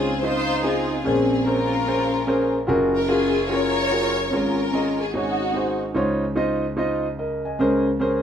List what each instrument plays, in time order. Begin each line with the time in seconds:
Already playing: grand piano C#2 C#3 C#5, string section C4 F4 G#4
0.23 grand piano D#4 F4 C5 D#5, string section D#4 F4 C5
0.63 string section C4 F4 G#4, grand piano D#4 F4 C5 D#5
1.03 grand piano A#1 A#2 C#4 G#4 A#4 C5, string section C4 C#4 G#4
1.45 grand piano C#4 G#4 A#4 C5, string section C#4 F4 A#4
1.86 grand piano C#4 G#4 A#4 C5
2.27 grand piano C#4 G#4 A#4 C5
2.67 grand piano F#1 F#2 F4 F#4 G#4 A#4
2.96 string section A#4
3.09 string section C#4 F4 G#4, grand piano F4 F#4 G#4 A#4
3.49 grand piano F4 F#4 G#4 A#4, string section F4 A#4 C#5
3.90 grand piano F4 F#4 G#4 A#4
4.31 grand piano G#1 G#2 C#4 F4 G#4 C#5, string section C#4 F4 A#4
4.73 grand piano C#4 F4 G#4 D#5
5.02 string section G#4
5.14 grand piano G#1 G#2 D#4 F#4 G#4 C#5, string section C#4 D#4 F#4
5.54 grand piano D#4 F#4 G#4 C5
5.94 grand piano C#2 C#3 D#4 F4 C5 C#5
6.36 grand piano D#4 F4 C5 D#5
6.77 grand piano D#4 F4 C5 D#5
7.19 grand piano A#4 D#5
7.45 grand piano D#5 G#5
7.59 grand piano C#2 C#3 C#4 G#4 A#4 C5
8.00 grand piano C#4 G#4 A#4 C5